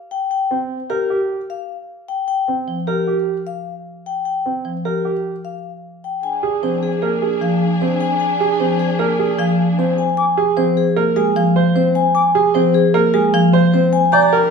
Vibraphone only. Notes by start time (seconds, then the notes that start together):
0.11 G5
0.31 G5
0.90 G4
1.50 F5
2.08 G5
2.28 G5
2.87 G4
3.47 F5
4.06 G5
4.25 G5
4.85 G4
5.45 F5
6.04 G5
6.23 G#5
6.63 C5
6.83 G#4
7.42 F5
7.81 C5
8.01 G#5
8.20 G#5
8.60 C5
8.79 G#4
9.39 F5
9.79 C5
9.98 G#5
10.17 G#5
10.57 C5
10.77 G#4
11.16 G#5
11.36 F5
11.76 C5
11.95 G#5
12.15 G#5
12.55 C5
12.74 G#4
13.14 G#5
13.34 F5
13.74 C5
13.93 G#5
14.12 A#5